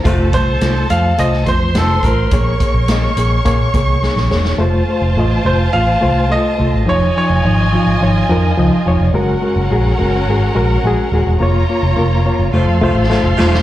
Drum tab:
HH |x-x-x-x-x-x-x-x-|x-x-x-x-x-x-----|----------------|----------------|
SD |----o----o--o---|----o-------oooo|----------------|----------------|
BD |o-o-------o---o-|o-o-----o-o-----|----------------|----------------|

HH |----------------|----------------|
SD |----------------|------------o-oo|
BD |----------------|----------------|